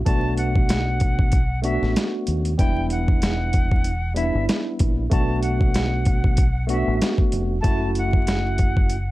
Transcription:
0.05 fingered electric bass B1, tine electric piano A3 B3 D4 F#4, flute A5, kick, closed hi-hat
0.37 flute F#5, closed hi-hat
0.55 kick
0.69 snare, closed hi-hat
1.00 kick, closed hi-hat
1.19 kick
1.32 kick, closed hi-hat
1.62 tine electric piano A3 B3 D4 F#4, flute E5, closed hi-hat
1.82 fingered electric bass A1, snare
1.96 snare, closed hi-hat
2.27 fingered electric bass D#2, closed hi-hat
2.45 closed hi-hat
2.57 fingered electric bass E1, tine electric piano G3 B3 D4 E4, flute G5, kick, closed hi-hat
2.90 flute F#5, closed hi-hat
3.08 kick
3.22 snare, closed hi-hat
3.53 kick, closed hi-hat
3.71 kick
3.84 closed hi-hat
4.14 tine electric piano G3 B3 D4 E4, flute E5, closed hi-hat
4.35 fingered electric bass G1
4.49 snare, closed hi-hat
4.79 fingered electric bass A#1, kick, closed hi-hat
5.10 fingered electric bass B1, tine electric piano A3 B3 D4 F#4, flute A5, kick, closed hi-hat
5.42 flute F#5, closed hi-hat
5.61 kick
5.74 snare, closed hi-hat
6.05 kick, closed hi-hat
6.24 kick
6.37 kick, closed hi-hat
6.67 tine electric piano A3 B3 D4 F#4, closed hi-hat
6.71 flute E5
6.88 fingered electric bass A1
7.01 snare, closed hi-hat
7.18 kick
7.32 fingered electric bass F1, closed hi-hat
7.61 fingered electric bass F#1, tine electric piano A3 C#4 E4, flute A5, kick, closed hi-hat
7.66 tine electric piano F#4
7.95 flute F#5, closed hi-hat
8.13 kick
8.27 snare, closed hi-hat
8.58 kick, closed hi-hat
8.77 kick
8.90 closed hi-hat

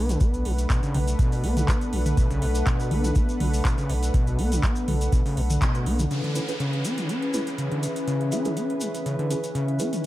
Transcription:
Already playing: sub bass B1, analog synth pad A3 D4 B4, acid bass B3, ambient pad D4 A4 F#5
0.09 acid bass C#3, closed hi-hat, cabasa
0.21 acid bass B3, kick, closed hi-hat, cabasa
0.34 sub bass B1, closed hi-hat, cabasa
0.45 sub bass B1, acid bass E3, open hi-hat
0.58 closed hi-hat, cabasa
0.70 acid bass B2, kick, clap, closed hi-hat, cabasa
0.83 acid bass C#3, closed hi-hat, cabasa
0.94 sub bass B1, acid bass B2, open hi-hat, mid tom
1.08 closed hi-hat, cabasa
1.19 acid bass B2, kick, closed hi-hat, cabasa
1.32 open hi-hat, cabasa
1.44 sub bass B1, acid bass B3, open hi-hat
1.57 acid bass C#3, closed hi-hat, mid tom, cabasa
1.68 acid bass B3, kick, clap, closed hi-hat, cabasa
1.81 closed hi-hat, cabasa
1.93 sub bass B1, acid bass E3, open hi-hat
2.06 closed hi-hat, mid tom, cabasa
2.17 acid bass B2, kick, closed hi-hat, cabasa
2.31 sub bass B1, acid bass C#3, closed hi-hat, cabasa
2.42 sub bass B1, acid bass B2, open hi-hat
2.55 closed hi-hat, cabasa
2.66 acid bass B2, kick, clap, closed hi-hat, cabasa
2.80 closed hi-hat, cabasa
2.91 sub bass B1, acid bass B3, open hi-hat, mid tom
3.04 acid bass C#3, closed hi-hat, cabasa
3.15 acid bass B3, kick, closed hi-hat, cabasa
3.29 closed hi-hat, cabasa
3.40 sub bass B1, acid bass E3, open hi-hat, mid tom
3.53 open hi-hat, cabasa
3.65 acid bass B2, kick, clap, closed hi-hat, cabasa
3.78 acid bass C#3, closed hi-hat, cabasa
3.89 sub bass B1, acid bass B2, open hi-hat
4.03 closed hi-hat, cabasa
4.14 acid bass B2, kick, closed hi-hat, cabasa
4.27 sub bass B1, closed hi-hat, cabasa
4.39 sub bass B1, acid bass B3, open hi-hat
4.52 acid bass C#3, closed hi-hat, cabasa
4.63 acid bass B3, kick, clap, closed hi-hat, cabasa
4.75 closed hi-hat, cabasa
4.88 sub bass B1, acid bass E3, open hi-hat, mid tom
5.01 closed hi-hat, cabasa
5.12 acid bass B2, kick, closed hi-hat, cabasa
5.26 acid bass C#3, open hi-hat, cabasa
5.37 sub bass B1, acid bass B2, open hi-hat
5.50 closed hi-hat, mid tom, cabasa
5.62 acid bass B2, kick, clap, closed hi-hat, cabasa
5.75 closed hi-hat, cabasa
5.86 sub bass B1, acid bass B3, open hi-hat
5.99 acid bass C#3, closed hi-hat, mid tom, cabasa
6.11 acid bass C#3, analog synth pad E3 C#4 B4, ambient pad C#4, closed hi-hat, downlifter, cabasa
6.24 acid bass D3, closed hi-hat
6.31 ambient pad G#4
6.35 acid bass C#3, synth stab C#4 E4 G#4 B4, closed hi-hat, cabasa
6.48 synth stab C#4 E4 G#4 B4, closed hi-hat, cabasa
6.60 acid bass C#3, ambient pad B4, closed hi-hat, cabasa
6.73 closed hi-hat
6.84 acid bass C#4, closed hi-hat, cabasa
6.98 acid bass D3, closed hi-hat, cabasa
7.09 acid bass C#4, ambient pad E5, closed hi-hat, cabasa
7.22 closed hi-hat
7.34 acid bass F#3, synth stab C#4 E4 G#4 B4, closed hi-hat, cabasa
7.47 closed hi-hat, cabasa
7.58 acid bass C#3, closed hi-hat, cabasa
7.72 acid bass D3, closed hi-hat
7.83 acid bass C#3, closed hi-hat, cabasa
7.96 closed hi-hat, cabasa
8.08 acid bass C#3, closed hi-hat, cabasa
8.21 closed hi-hat
8.32 synth stab C#4 E4 G#4 E5, acid bass C#4, closed hi-hat, cabasa
8.45 acid bass D3, synth stab C#4 E4 G#4 B4, closed hi-hat, cabasa
8.57 acid bass C#4, closed hi-hat, cabasa
8.70 closed hi-hat
8.80 acid bass F#3, closed hi-hat, cabasa
8.95 closed hi-hat, cabasa
9.06 acid bass C#3, closed hi-hat, cabasa
9.19 acid bass D3, closed hi-hat
9.31 acid bass C#3, synth stab C#4 E4 G#4 B4, closed hi-hat, cabasa
9.44 closed hi-hat, cabasa
9.55 acid bass C#3, closed hi-hat, cabasa
9.68 closed hi-hat
9.79 synth stab C#4 E4 G#4 B4, acid bass C#4, closed hi-hat, cabasa
9.93 acid bass D3, closed hi-hat, cabasa

